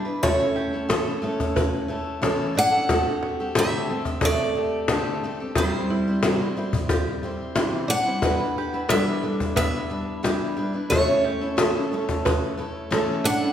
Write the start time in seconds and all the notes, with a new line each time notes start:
Already playing: B3 G4 E5
0.05 D4 E4 B4
0.23 E3 A3 C#4 E4 A4 C#5, cajon bass, cajon slap
0.39 C#4 E4 A4
0.56 G4
0.73 C#4 E4 A4, cajon slap
0.89 E3 A3 C#4 E4 A4, cajon slap
1.05 C#4 E4 A4
1.22 A3 C#4 E4 A4, cajon slap
1.40 cajon bass, cajon slap
1.56 B4, cajon bass, cajon slap
1.74 cajon slap
1.88 A3 C#4 E4 A4
2.22 E3 A3 C#4 E4 A4, cajon slap
2.55 A3 C#4 D4 E4 A4 F#5
2.71 C#4 E4 A4
2.89 D3 A3 C4 G4 A4, cajon bass, cajon slap
3.07 C4 G4 A4
3.23 F#4
3.39 C4 G4 A4, cajon slap
3.55 D3 A3 C4 G4 A4 E5, cajon slap
3.89 A3 C4 G4 A4, cajon slap
4.05 cajon bass, cajon slap
4.21 A3 A4 D5, cajon bass, cajon slap
4.38 cajon slap
4.55 A3 C4 G4 A4, cajon slap
4.88 D3 A3 C4 G4 A4, cajon slap
5.24 A3 C4 G4 A4
5.40 C4 G4 A4
5.55 C3 E3 G3 C4 E4 G4 C5, cajon bass, cajon slap
5.73 G3 C4 E4 C5
5.90 E4
6.06 G3 C4 E4 C5, cajon slap
6.23 C3 E3 G3 C4 E4 F#4 C5, cajon slap
6.39 G3 C4 E4 C5
6.57 G3 C4 E4 C5, cajon slap
6.73 cajon bass
6.89 G4, cajon bass, cajon slap
7.07 cajon slap
7.23 G3 C4 E4 C5, cajon slap
7.55 C3 E3 G3 C4 E4 C5, cajon slap
7.88 G3 C4 D4 E4 F#5
8.06 G3 C4 E4 C5
8.22 E3 G3 D4 E4 B4, cajon bass, cajon slap
8.39 D4 E4 B4
8.58 G4
8.73 D4 E4 B4, cajon slap
8.89 E3 G3 B3 D4 E4 A4 B4 E5, cajon slap
9.23 G3 D4 E4 B4, cajon slap
9.40 cajon bass, cajon slap
9.56 B3 B4 E5, cajon bass, cajon slap
9.74 cajon slap
9.90 G3 D4 E4 B4, cajon slap
10.23 E3 G3 D4 E4 G4 B4, cajon slap
10.57 G3 D4 E4 B4
10.73 D4 E4 B4
10.90 E3 A3 C#4 E4 A4 C#5, cajon bass, cajon slap
11.06 C#4 E4 A4
11.24 G4
11.41 C#4 E4 A4, cajon slap
11.57 E3 A3 C#4 E4 A4, cajon slap
11.75 C#4 E4 A4
11.92 A3 C#4 E4 A4, cajon slap
12.09 cajon bass, cajon slap
12.25 B4, cajon bass, cajon slap
12.43 cajon slap
12.57 A3 C#4 E4 A4, cajon slap
12.90 E3 A3 C#4 E4 A4, cajon slap
13.24 A3 C#4 D4 E4 A4 F#5
13.41 C#4 E4 A4